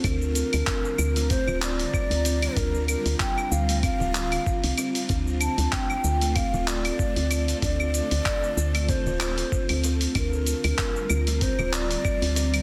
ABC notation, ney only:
X:1
M:4/4
L:1/8
Q:"Swing 16ths" 1/4=95
K:Cmix
V:1 name="Ney"
B4 c d3 | B B g f f3 z | z a g2 f d3 | d4 c3 z |
B4 c d3 |]